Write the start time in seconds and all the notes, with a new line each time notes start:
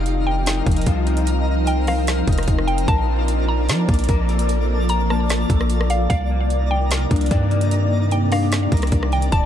Already playing: F1 F3 C4 D#4 F4 A#4 F5
0.06 closed hi-hat
0.27 G5
0.46 D#4, snare, closed hi-hat
0.66 F1 F3, kick, closed hi-hat
0.71 closed hi-hat
0.76 closed hi-hat
0.82 closed hi-hat
0.86 C2 F4, kick, closed hi-hat
1.06 D#4, closed hi-hat
1.17 closed hi-hat
1.27 closed hi-hat
1.67 G5, closed hi-hat
1.87 F3 F5, cross-stick, open hi-hat
2.07 snare, closed hi-hat
2.27 F1 D#4, kick, closed hi-hat
2.33 closed hi-hat
2.38 cross-stick, closed hi-hat
2.43 closed hi-hat
2.48 F1, kick, closed hi-hat
2.59 cross-stick
2.67 G5, closed hi-hat
2.78 closed hi-hat
2.88 A#1 F3 A#3 D4 A#4 D5 A5 A6, kick, closed hi-hat
3.08 F4
3.28 closed hi-hat
3.48 A#5
3.69 F3, snare, closed hi-hat
3.88 A#1 A#3, kick, closed hi-hat
3.94 closed hi-hat
3.99 closed hi-hat
4.04 closed hi-hat
4.09 A#1 A#4, kick, closed hi-hat
4.29 A4, closed hi-hat
4.39 closed hi-hat
4.49 closed hi-hat
4.89 A#5, closed hi-hat
5.10 A#3 A5, cross-stick
5.30 snare, closed hi-hat
5.50 A#1 A4, kick, closed hi-hat
5.61 cross-stick
5.70 closed hi-hat
5.81 cross-stick
5.90 F5, closed hi-hat
6.10 C2 C3 D#3 A#3 D#4 D5 F5 A#5, kick, closed hi-hat
6.31 A#4
6.50 closed hi-hat
6.71 G5
6.91 A#4, snare, closed hi-hat
7.11 C2 D4, kick, closed hi-hat
7.16 closed hi-hat
7.21 closed hi-hat
7.26 closed hi-hat
7.31 G2 D5, kick, closed hi-hat
7.51 A#4, closed hi-hat
7.61 closed hi-hat
7.71 closed hi-hat
8.11 G5, closed hi-hat
8.32 D4 F5, cross-stick, open hi-hat
8.52 snare, closed hi-hat
8.72 C2 A#4, kick, closed hi-hat
8.77 closed hi-hat
8.82 cross-stick, closed hi-hat
8.87 closed hi-hat
8.92 C2, kick, closed hi-hat
9.03 cross-stick
9.12 G5, closed hi-hat
9.22 closed hi-hat
9.32 D#1 D#3 D4 F4 G4 D5 G5 A5, kick, closed hi-hat